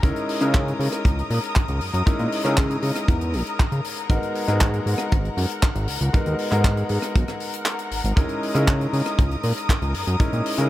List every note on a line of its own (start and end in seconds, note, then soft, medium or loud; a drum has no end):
0.00 0.12 C#2 loud
0.00 0.38 G#3 medium
0.00 0.38 C#4 medium
0.00 0.38 D#4 medium
0.00 0.39 E4 medium
0.00 8.13 A#4 medium
0.00 0.39 A#4 medium
0.00 4.06 D#6 medium
0.00 kick loud
0.00 closed hi-hat medium
0.16 closed hi-hat medium
0.29 open hi-hat loud
0.40 0.73 C#3 loud
0.40 2.03 G#3 medium
0.40 2.03 C#4 medium
0.40 2.04 D#4 medium
0.40 2.04 E4 medium
0.40 2.04 A#4 medium
0.40 cross-stick medium
0.40 closed hi-hat medium
0.54 kick loud
0.54 clap loud
0.54 closed hi-hat medium
0.68 closed hi-hat soft
0.80 0.88 C#3 medium
0.80 open hi-hat loud
0.92 cross-stick medium
0.92 closed hi-hat medium
1.05 1.23 C#2 loud
1.05 kick loud
1.05 closed hi-hat medium
1.19 closed hi-hat soft
1.30 1.39 A#2 loud
1.30 open hi-hat loud
1.44 closed hi-hat medium
1.56 kick loud
1.56 clap loud
1.56 closed hi-hat medium
1.68 1.80 C#2 loud
1.68 closed hi-hat soft
1.81 1.91 F#2 soft
1.81 open hi-hat loud
1.94 2.03 F#2 loud
1.94 closed hi-hat medium
2.06 2.17 A#2 soft
2.06 2.41 G#3 medium
2.06 2.42 C#4 medium
2.06 2.42 D#4 medium
2.06 2.42 E4 medium
2.06 2.42 A#4 medium
2.06 kick loud
2.06 closed hi-hat medium
2.19 2.28 A#2 loud
2.19 closed hi-hat soft
2.32 open hi-hat loud
2.44 2.77 C#3 loud
2.44 4.07 G#3 medium
2.44 4.07 C#4 medium
2.44 4.07 D#4 medium
2.44 4.07 E4 medium
2.44 4.08 A#4 medium
2.44 cross-stick medium
2.44 closed hi-hat medium
2.57 kick loud
2.57 clap loud
2.57 closed hi-hat medium
2.70 closed hi-hat soft
2.82 2.92 C#3 medium
2.82 open hi-hat loud
2.96 cross-stick medium
2.96 closed hi-hat medium
3.08 3.35 E2 loud
3.08 kick loud
3.08 closed hi-hat medium
3.21 closed hi-hat soft
3.33 3.43 A#1 medium
3.33 open hi-hat loud
3.47 closed hi-hat medium
3.59 kick loud
3.59 clap loud
3.59 closed hi-hat medium
3.72 3.81 C#3 medium
3.72 closed hi-hat soft
3.84 open hi-hat loud
3.97 closed hi-hat medium
4.10 4.19 G#1 loud
4.10 4.45 G#3 medium
4.10 4.45 B3 medium
4.10 4.45 D#4 medium
4.10 4.45 F#4 medium
4.10 4.45 A#4 medium
4.10 8.13 F#5 medium
4.10 kick loud
4.10 closed hi-hat medium
4.23 closed hi-hat soft
4.35 open hi-hat loud
4.47 4.80 G#2 loud
4.47 6.10 G#3 medium
4.47 6.10 B3 medium
4.47 6.10 D#4 medium
4.47 6.11 F#4 medium
4.47 6.11 A#4 medium
4.47 cross-stick medium
4.47 closed hi-hat medium
4.61 kick loud
4.61 clap loud
4.61 closed hi-hat medium
4.73 closed hi-hat soft
4.86 4.95 G#2 medium
4.86 open hi-hat loud
4.98 cross-stick medium
4.98 closed hi-hat medium
5.12 5.30 G#1 medium
5.12 kick loud
5.12 closed hi-hat medium
5.25 closed hi-hat soft
5.37 5.46 F#2 loud
5.37 open hi-hat loud
5.49 closed hi-hat medium
5.62 kick loud
5.62 clap loud
5.62 closed hi-hat medium
5.75 5.88 G#1 loud
5.75 closed hi-hat soft
5.88 5.98 C#2 soft
5.88 open hi-hat loud
6.01 6.10 C#2 loud
6.01 closed hi-hat medium
6.13 6.24 D#2 soft
6.13 6.48 G#3 medium
6.13 6.49 B3 medium
6.13 6.49 D#4 medium
6.13 6.49 F#4 medium
6.13 6.49 A#4 medium
6.13 kick loud
6.13 closed hi-hat medium
6.26 6.35 D#2 loud
6.26 closed hi-hat soft
6.39 open hi-hat loud
6.51 6.84 G#2 loud
6.51 8.13 G#3 medium
6.51 8.14 B3 medium
6.51 8.14 D#4 medium
6.51 8.14 F#4 medium
6.51 8.14 A#4 medium
6.51 cross-stick medium
6.51 clap soft
6.51 closed hi-hat medium
6.64 kick loud
6.64 clap loud
6.64 closed hi-hat medium
6.77 closed hi-hat soft
6.89 6.99 G#2 medium
6.89 open hi-hat medium
7.02 cross-stick medium
7.02 closed hi-hat medium
7.16 7.24 B1 medium
7.16 kick loud
7.16 closed hi-hat medium
7.28 cross-stick medium
7.28 closed hi-hat soft
7.40 open hi-hat medium
7.53 closed hi-hat medium
7.66 clap loud
7.66 closed hi-hat medium
7.79 closed hi-hat soft
7.91 8.02 G#1 soft
7.91 open hi-hat loud
8.04 8.13 G#1 loud
8.04 closed hi-hat medium
8.16 8.26 C#2 loud
8.16 8.52 G#3 medium
8.16 8.52 C#4 medium
8.16 8.52 D#4 medium
8.16 8.52 E4 medium
8.16 8.52 A#4 medium
8.16 10.69 A#4 medium
8.16 10.69 D#6 medium
8.16 kick loud
8.16 closed hi-hat medium
8.29 closed hi-hat soft
8.43 open hi-hat loud
8.54 8.87 C#3 loud
8.54 10.17 G#3 medium
8.54 10.17 C#4 medium
8.54 10.17 D#4 medium
8.54 10.18 E4 medium
8.54 10.18 A#4 medium
8.54 cross-stick medium
8.54 closed hi-hat medium
8.67 kick loud
8.67 clap loud
8.67 closed hi-hat medium
8.81 closed hi-hat soft
8.93 9.02 C#3 medium
8.93 open hi-hat loud
9.06 cross-stick medium
9.06 closed hi-hat medium
9.19 9.36 C#2 loud
9.19 kick loud
9.19 closed hi-hat medium
9.31 closed hi-hat soft
9.43 9.53 A#2 loud
9.43 open hi-hat loud
9.57 closed hi-hat medium
9.69 kick loud
9.69 clap loud
9.69 closed hi-hat medium
9.82 9.94 C#2 loud
9.82 closed hi-hat soft
9.94 10.05 F#2 soft
9.94 open hi-hat loud
10.07 10.16 F#2 loud
10.07 closed hi-hat medium
10.20 10.30 A#2 soft
10.20 10.55 G#3 medium
10.20 10.55 C#4 medium
10.20 10.55 D#4 medium
10.20 10.55 E4 medium
10.20 10.56 A#4 medium
10.20 kick loud
10.20 closed hi-hat medium
10.33 10.42 A#2 loud
10.33 closed hi-hat soft
10.46 open hi-hat loud
10.57 10.69 C#3 loud
10.57 10.69 G#3 medium
10.57 10.69 C#4 medium
10.57 10.69 D#4 medium
10.57 10.69 E4 medium
10.57 10.69 A#4 medium
10.57 cross-stick medium
10.57 closed hi-hat medium